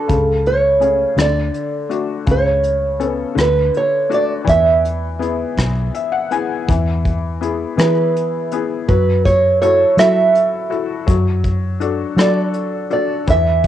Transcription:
Already playing: D3 D4 F#4 A4
0.08 C#2 C#3, kick, closed hi-hat
0.46 C#5, closed hi-hat
0.80 A3 C#4 G#4, closed hi-hat
1.17 D2 D3, cross-stick, closed hi-hat
1.22 D5
1.54 closed hi-hat
1.89 A3 D4 F#4, closed hi-hat
2.26 C#2 C#3, kick, closed hi-hat
2.31 C#5
2.64 closed hi-hat
3.00 B3 C#4 A4, closed hi-hat
3.08 B4
3.35 D2 D3, cross-stick, closed hi-hat
3.41 B4
3.74 C#5, closed hi-hat
4.10 A3 D4 F#4, closed hi-hat
4.14 D5
4.45 E2 E3, kick, closed hi-hat
4.49 E5
4.85 closed hi-hat
5.19 B3 E4 G#4, closed hi-hat
5.57 B1, kick, cross-stick, closed hi-hat
5.95 E5, closed hi-hat
6.12 F#5
6.31 B3 E4 G#4 G#5, closed hi-hat
6.68 E2 E3, kick, closed hi-hat
7.05 kick, closed hi-hat
7.41 B3 E4 G#4, closed hi-hat
7.77 E3 B3 E4 G#4 B4, cross-stick, closed hi-hat
8.17 closed hi-hat
8.51 B3 E4 G#4, closed hi-hat
8.88 F#2 F#3 B4, kick, closed hi-hat
9.25 C#5, kick, closed hi-hat
9.62 E4 F#4 A4 C#5, closed hi-hat
9.97 F#3 E4 F#4 A4 E5, cross-stick, closed hi-hat
10.35 closed hi-hat
10.70 E4 F#4 A4, closed hi-hat
11.07 F#2 F#3, kick, closed hi-hat
11.44 kick, closed hi-hat
11.80 D4 F#4 A4, closed hi-hat
12.17 F#3 D4 F#4 A4, cross-stick, closed hi-hat
12.21 D5
12.54 closed hi-hat
12.90 D4 F#4 A4 D5, closed hi-hat
13.27 E2 E3 E5, kick, closed hi-hat
13.64 closed hi-hat

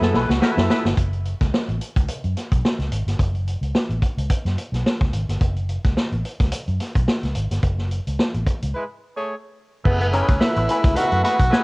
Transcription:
Already playing: A3 B3 E4 G#4
0.01 F#2 A4, muted clean electric guitar stroke, snare
0.14 B1 A3 E4 G#4 B4, snare
0.29 C#2 F#4, snare
0.41 A3 B3 E4 F#4 G#4 B4, snare
0.48 A4
0.57 F#2 E4, muted clean electric guitar stroke, snare
0.69 A3 E4 G#4 B4, snare
0.85 G1, muted clean electric guitar stroke, snare
0.97 F#1, kick, closed hi-hat
1.13 closed hi-hat
1.25 closed hi-hat
1.41 C#2, kick, snare, closed hi-hat
1.54 snare
1.68 A1, closed hi-hat
1.81 closed hi-hat
1.96 C#2, kick, closed hi-hat
2.08 muted fingered electric bass stroke, closed hi-hat
2.24 F#2, closed hi-hat
2.36 snare, closed hi-hat
2.52 B1, kick, closed hi-hat
2.65 snare
2.79 C#2, snare, closed hi-hat
2.91 G#1, closed hi-hat
3.06 G1, snare, closed hi-hat
3.19 F#1, kick, closed hi-hat
3.35 closed hi-hat
3.47 closed hi-hat
3.61 C#2, closed hi-hat
3.75 snare
3.89 A1, closed hi-hat
4.02 kick, closed hi-hat
4.17 C#2, closed hi-hat
4.30 kick, closed hi-hat
4.45 F#2, snare, closed hi-hat
4.58 closed hi-hat
4.72 B1, snare, closed hi-hat
4.86 snare
5.01 C#2, kick, snare, closed hi-hat
5.13 G#1, closed hi-hat
5.29 G1, snare, closed hi-hat
5.41 F#1, kick, closed hi-hat
5.57 closed hi-hat
5.69 closed hi-hat
5.85 C#2, kick, snare, closed hi-hat
5.97 snare
6.12 A1, closed hi-hat
6.25 closed hi-hat
6.40 C#2, kick, snare, closed hi-hat
6.52 muted fingered electric bass stroke, closed hi-hat
6.68 F#2, closed hi-hat
6.80 snare, closed hi-hat
6.96 B1, kick, closed hi-hat
7.08 snare
7.23 C#2, snare, closed hi-hat
7.35 G#1, closed hi-hat
7.51 G1, snare, closed hi-hat
7.63 F#1, kick, closed hi-hat
7.78 snare
7.91 closed hi-hat
8.07 C#2, closed hi-hat
8.19 snare
8.34 A1, closed hi-hat
8.46 kick, closed hi-hat
8.62 C#2, closed hi-hat
8.75 G#3 E4 B4
9.17 A3 G#4 C#5
9.84 F#1 A3 B3 E4 G#4, kick, crash
10.00 B3, closed hi-hat
10.13 A3 C#4 E4 G#4 B4, closed hi-hat
10.29 C#2, kick, snare, closed hi-hat
10.40 A3 B3 E4 B4, muted clean electric guitar stroke, snare
10.56 A1, muted clean electric guitar stroke, closed hi-hat
10.69 A3 E4 G#4 B4, closed hi-hat
10.84 C#2 A3 E4 G#4 B4, kick, snare, closed hi-hat
10.95 A3 B3 E4 F#4 G#4 A#4 B4, muted fingered electric bass stroke, closed hi-hat
11.02 B4
11.12 F#2, muted clean electric guitar stroke, closed hi-hat
11.23 A3 E4 F#4 G#4 B4, snare, closed hi-hat
11.40 B1, muted clean electric guitar stroke, kick, closed hi-hat
11.50 A3 B3 E4 G#4 B4, snare

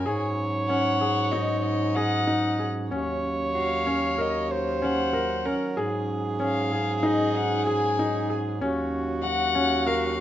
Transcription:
Already playing: G#5
0.06 G#2 F#3 G#3 C#4 G#4 C#5
0.69 C#4 F#5
1.01 G#4
1.31 D#4 D#5
1.62 D#5
1.95 G#4 D#5 F#5
2.27 D#4
2.59 G#4
2.91 D#2 D#3 C#4 C#5
3.55 F#4 F5
3.87 C#4
4.18 A#4 D#5
4.51 C5 C#5
4.82 C#4 F#5
5.13 A#4
5.46 C#4 A#4
5.77 G#2 G#3 G#4
6.40 C#4
6.44 F5
6.72 G#4
6.97 F5
7.03 D#4 D#5
7.36 F#5
7.67 G#4 G#5
7.99 D#4
8.30 G#4
8.61 D#2 D#3 C#4 F#4
9.23 F#4 F#5
9.55 C#4
9.87 A#4 F5

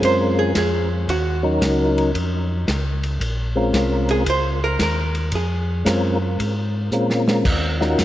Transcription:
Already playing: G#3 C4 C#4 F4 A#4
0.02 F#2 C5, kick, ride
0.39 G#4
0.55 F2 G#4, kick, snare, hi-hat pedal, ride
1.08 D#2 F#4, kick, ride
1.43 F#3 C#4 D#4 A#4
1.61 C#2, kick, snare, hi-hat pedal, ride
1.98 ride
2.14 F2, kick, ride
2.67 C#2, kick, snare, hi-hat pedal, ride
3.03 ride
3.20 A#1, kick, ride
3.56 G#3 C4 C#4 F4 A#4
3.73 C2, kick, snare, hi-hat pedal, ride
4.09 G#4, ride
4.26 C#2 C5, kick, ride
4.64 A#4
4.79 D#2 A#4, kick, snare, hi-hat pedal, ride
5.15 ride
5.32 F2 G#4, kick, ride
5.85 F#2 G#3 C4 C#4 F4 A#4, kick, snare, hi-hat pedal, ride
6.38 G#2, kick, ride
6.91 A#2 G#3 C4 C#4 F4 A#4, hi-hat pedal
7.10 snare
7.28 snare
7.45 D#2, kick, crash
7.81 C#4 D#4 F4 F#4 A#4, snare
7.98 F2, kick, snare, hi-hat pedal, ride

